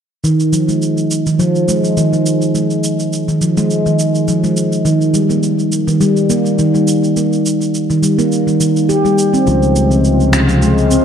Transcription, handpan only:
0.24 D#3
0.53 F3
0.69 G#3
1.27 D#3
1.39 F3
1.68 G#3
1.97 D#3
2.13 F3
2.55 G#3
3.28 D#3
3.42 F3
3.57 G#3
3.86 D#3
4.28 F3
4.44 G#3
4.85 D#3
5.14 G3
5.30 A#3
5.87 D#3
6.01 G3
6.30 A#3
6.59 D#3
6.75 G3
7.17 A#3
7.90 D#3
8.03 G3
8.19 A#3
8.47 D#3
8.60 D#3
8.89 G4
9.05 G3
9.34 C4
9.47 F3
9.76 G#3
9.91 C4
10.49 F3
10.62 G#3
10.91 C4

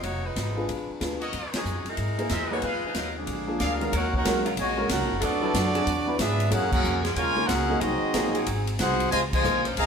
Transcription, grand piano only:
0.56 D4 F4 G#4 B4
1.00 D4 F4 G#4 B4
2.18 A#3 D#4 G#4 C5
2.51 A#3 D#4 G#4 B4
3.47 A#3 D4 F4 G#4
3.80 D#3 G#3 C#4 F#4 A#4
4.24 G#3 C#4 F#4 A#4
4.77 G#3 C#4 F#4 A#4
5.41 F#3 B3 E4 A4
6.06 F#3 B3 E4 B4
6.50 A#3 D#4 G#4 C#5
7.36 A#3 D#4 G#4 C#5
7.69 A#3 D#4 G#4 D#5
8.13 A#3 D#4 G#4 C5
9.43 A#3 D#4 G#4 C5

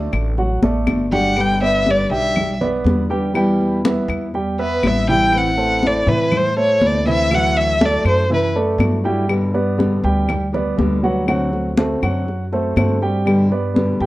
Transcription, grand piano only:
Already playing: A3 A4 D5
0.38 F#3 F#4 F#5
0.62 A3 A4 D5
1.12 G3 G4 G5
1.61 B3 B4 D5
2.11 G3 G4 G5
2.61 B3 B4 D5
3.10 G3 G4 G5
3.35 G3 G4 G5
3.85 B3 B4 E5
4.34 G3 G4 G5
4.59 B3 B4 E5
5.08 E3 E4 E5
5.57 A3 A4 C5
6.06 E3 E4 E5
6.56 A3 A4 C5
7.06 E3 E4 E5
7.31 E3 E4 E5
7.81 A3 A4 D5
8.30 E3 E4 E5
8.55 A3 A4 D5
9.04 G3 G4 G5
9.54 B3 B4 D5
10.04 G3 G4 G5
10.53 B3 B4 D5
11.03 F#3 F#4 F#5
11.28 F#3 F#4 F#5
11.77 A3 A4 C5
12.03 F#3 F#4 F#5
12.53 A3 A4 C5
12.78 A3 A4 C5
13.02 G3 G4 G5
13.51 B3 B4 D5
14.01 G3 G4 G5

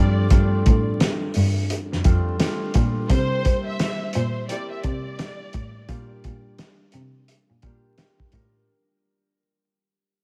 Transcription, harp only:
Already playing: G3 A3 C4 D4 F4
0.30 G3 A3 C4 D4 F4
2.04 G3 A3 C4 D4 F4
2.38 G3 A3 C4 D4 F4
2.74 G3 A3 C4 D4 F4
3.10 G3 A#3 C4 E4 G4
4.48 G3 A#3 C4 E4 G4
5.88 G3 A#3 D4 F4 G4
7.63 G3 A#3 D4 F4 G4
7.98 G3 A#3 D4 F4 G4
8.32 G3 D4 F4 G4 A#4

